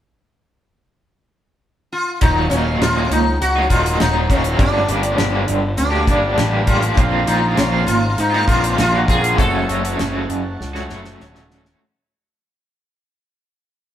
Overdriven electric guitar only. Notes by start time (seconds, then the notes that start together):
2.22 D#2 A#2 D#3 F#3 A#3 D#4
2.50 D#3 F#3 A#3 D#4
2.65 D#3 F#3 A#3 D#4
2.81 D#2 A#2 D#3 F#3 A#3 D#4
2.97 D#3 F#3 A#3 D#4
3.13 muted overdriven electric guitar stroke
3.56 D#3 F#3 A#3 D#4
3.71 D#3 F#3 A#3 D#4
3.99 D#2 A#2 D#3 F#3 A#3 D#4
4.15 D#3 F#3 A#3 D#4
4.29 D#3 F#3 A#3 D#4
4.44 D#3 F#3 A#3 D#4
4.57 G2 D3 G3 A#3 D4 G4
4.87 G3 A#3 D4 G4
5.03 G3 A#3 D4 G4
5.16 G2 D3 G3 A#3 D4 G4
5.31 G3 A#3 D4 G4
5.46 muted overdriven electric guitar stroke
5.91 G3 A#3 D4 G4
6.06 G3 A#3 D4 G4
6.35 G2 D3 G3 A#3 D4 G4
6.50 G3 A#3 D4 G4
6.65 G3 A#3 D4 G4
6.80 G3 A#3 D4 G4
6.96 A#2 F3 A#3 C4 F4
7.25 F3 A#3 C4 F4
7.40 A#3 C4 F4
7.54 A#2 F3 A#3 C4 F4
7.70 A#3 C4 F4
7.86 muted overdriven electric guitar stroke
8.30 A#3 C4 F4
8.45 F3 A#3 C4 F4
8.76 A#2 F3 A#3 C4 F4
8.91 A#3 C4 F4
9.06 F3 A#3 C4 F4
9.22 A#3 C4 F4
9.37 F#2 C#3 F#3 A3 C#4 F#4
9.67 F#3 A3 C#4 F#4
9.83 F#3 A3 C#4 F#4
9.96 F#2 C#3 F#3 A3 C#4 F#4
10.13 F#3 A3 C#4 F#4
10.28 muted overdriven electric guitar stroke
10.74 F#3 A3 C#4 F#4
10.89 F#3 A3 C#4 F#4
11.19 F#2 C#3 F#3 A3 C#4 F#4
11.35 F#3 A3 C#4 F#4
11.49 F#3 A3 C#4 F#4
11.65 F#3 A3 C#4 F#4